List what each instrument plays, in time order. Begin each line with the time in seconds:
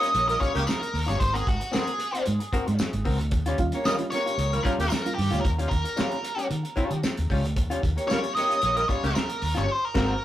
Already playing: lead electric guitar D#5
0.00 hollow-body jazz guitar G3 C#4 F4, closed hi-hat
0.14 fingered electric bass A#1, horn section A#3 G4 C#5, muted hollow-body jazz guitar stroke, closed hi-hat
0.27 horn section G3 F4 A#4, lead electric guitar D#5, muted hollow-body jazz guitar stroke, closed hi-hat
0.39 hollow-body jazz guitar G3 C#4 F4, lead electric guitar C#5, kick, closed hi-hat
0.54 fingered electric bass C#2, horn section C#3 A#3 G4, muted hollow-body jazz guitar stroke, closed hi-hat
0.66 lead electric guitar A#4, muted hollow-body jazz guitar stroke, snare, tambourine
0.80 muted hollow-body jazz guitar stroke, closed hi-hat
0.94 fingered electric bass D#2, open hi-hat
1.06 fingered electric bass G1, hollow-body jazz guitar G3 C#4 F4, lead electric guitar C#5, snare, closed hi-hat
1.19 fingered electric bass G#1, lead electric guitar C5, muted hollow-body jazz guitar stroke, kick, closed hi-hat
1.33 hollow-body jazz guitar C4 F#4 A#4, lead electric guitar G#4, closed hi-hat
1.46 fingered electric bass G#1, lead electric guitar F#4, muted hollow-body jazz guitar stroke, kick, closed hi-hat
1.60 muted hollow-body jazz guitar stroke, closed hi-hat
1.71 hollow-body jazz guitar C4 F#4 A#4, lead electric guitar G#4, snare, tambourine
1.87 closed hi-hat
1.98 muted hollow-body jazz guitar stroke, closed hi-hat
2.12 hollow-body jazz guitar C4 F#4 C5, closed hi-hat
2.26 fingered electric bass G#2, muted hollow-body jazz guitar stroke, closed hi-hat
2.40 muted hollow-body jazz guitar stroke, closed hi-hat
2.52 hollow-body jazz guitar C4 F#4 A#4, muted fingered electric bass stroke, kick, closed hi-hat
2.66 fingered electric bass G#2, muted hollow-body jazz guitar stroke, closed hi-hat
2.79 muted hollow-body jazz guitar stroke, snare, tambourine
2.93 fingered electric bass G#1, closed hi-hat
3.05 fingered electric bass C#2, hollow-body jazz guitar C4 F#4 A#4, kick, open hi-hat
3.19 fingered electric bass D2, muted hollow-body jazz guitar stroke, closed hi-hat
3.31 fingered electric bass D#2, reed electric piano D#3, muted hollow-body jazz guitar stroke, kick, closed hi-hat
3.46 hollow-body jazz guitar G3 C#4 F4, closed hi-hat
3.58 fingered electric bass D#2, reed electric piano G3 C#4 F4, muted hollow-body jazz guitar stroke, kick, closed hi-hat
3.72 horn section A#3 G4 C#5, reed electric piano C#4 F4, muted hollow-body jazz guitar stroke, closed hi-hat
3.85 reed electric piano D#3, hollow-body jazz guitar G3 C#4 F4, horn section G3 F4 A#4, lead electric guitar D#5, snare, tambourine
3.98 reed electric piano G3 C#4 F4, closed hi-hat
4.10 horn section A#3 G4 C#5, reed electric piano C#4 F4, lead electric guitar C#5, muted hollow-body jazz guitar stroke, snare, closed hi-hat
4.26 hollow-body jazz guitar G3 C#4 F4, closed hi-hat
4.38 fingered electric bass C#2, horn section A#3 G4 C#5, reed electric piano C#4 F4, muted hollow-body jazz guitar stroke, closed hi-hat
4.52 reed electric piano D#3, horn section G3 F4 A#4, muted hollow-body jazz guitar stroke, closed hi-hat
4.63 hollow-body jazz guitar G3 C#4 F4, reed electric piano G3 C#4 F4, lead electric guitar A#4, kick, closed hi-hat
4.79 fingered electric bass D#2, horn section C#3 A#3 G4, muted hollow-body jazz guitar stroke, closed hi-hat
4.88 lead electric guitar A#4, muted hollow-body jazz guitar stroke, snare, tambourine
5.05 reed electric piano G3 C#4 F4, muted hollow-body jazz guitar stroke, closed hi-hat
5.15 fingered electric bass G2, reed electric piano D#3, lead electric guitar G4, open hi-hat
5.31 fingered electric bass D2, reed electric piano G3 C#4 F4, hollow-body jazz guitar G3 C#4 F4, closed hi-hat
5.41 lead electric guitar A#4, muted hollow-body jazz guitar stroke, kick
5.45 fingered electric bass D#2, closed hi-hat
5.58 hollow-body jazz guitar G3 C#4 F4, closed hi-hat
5.69 fingered electric bass D#2, lead electric guitar A#4, muted hollow-body jazz guitar stroke, kick, closed hi-hat
5.84 muted hollow-body jazz guitar stroke, closed hi-hat
5.96 hollow-body jazz guitar G3 C#4 F4, snare, tambourine
6.11 closed hi-hat
6.23 muted hollow-body jazz guitar stroke, closed hi-hat
6.36 hollow-body jazz guitar G3 C#4 G4, closed hi-hat
6.49 fingered electric bass D#3, muted hollow-body jazz guitar stroke, closed hi-hat
6.63 muted hollow-body jazz guitar stroke, closed hi-hat
6.76 hollow-body jazz guitar G3 C#4 F4, muted fingered electric bass stroke, kick, closed hi-hat
6.91 fingered electric bass D#3, muted hollow-body jazz guitar stroke, closed hi-hat
7.03 muted hollow-body jazz guitar stroke, snare, tambourine
7.17 fingered electric bass D#2, closed hi-hat
7.30 fingered electric bass C#2, hollow-body jazz guitar G3 C#4 F4, kick, open hi-hat
7.44 fingered electric bass D2, muted hollow-body jazz guitar stroke, closed hi-hat
7.56 fingered electric bass D#2, muted hollow-body jazz guitar stroke, kick, closed hi-hat
7.70 hollow-body jazz guitar G3 C#4 F4, closed hi-hat
7.82 fingered electric bass D#2, muted hollow-body jazz guitar stroke, kick, closed hi-hat
7.96 horn section A#3 G4 C#5, muted hollow-body jazz guitar stroke, closed hi-hat
8.07 hollow-body jazz guitar G3 C#4 F4, horn section G3 F4 A#4, lead electric guitar C#5, snare, tambourine
8.23 closed hi-hat
8.35 horn section A#3 G4 C#5, lead electric guitar D#5, muted hollow-body jazz guitar stroke, snare, closed hi-hat
8.49 hollow-body jazz guitar G3 C#4 F4, closed hi-hat
8.62 fingered electric bass A#1, horn section A#3 G4 C#5, muted hollow-body jazz guitar stroke, closed hi-hat
8.75 horn section G3 F4 A#4, lead electric guitar D#5, muted hollow-body jazz guitar stroke, closed hi-hat
8.88 hollow-body jazz guitar G3 C#4 F4, lead electric guitar C#5, kick, closed hi-hat
9.03 fingered electric bass C#2, horn section C#3 A#3 G4, muted hollow-body jazz guitar stroke, closed hi-hat
9.15 lead electric guitar A#4, muted hollow-body jazz guitar stroke, snare, tambourine
9.29 muted hollow-body jazz guitar stroke, closed hi-hat
9.42 fingered electric bass D#2, open hi-hat
9.55 fingered electric bass G1, hollow-body jazz guitar G3 C#4 F4, lead electric guitar C#5, snare, closed hi-hat
9.71 lead electric guitar C5
9.85 lead electric guitar A#4
9.94 fingered electric bass G#1, reed electric piano A#3 C4 F#4, hollow-body jazz guitar C4 F#4 A#4, lead electric guitar A#4, kick, snare, crash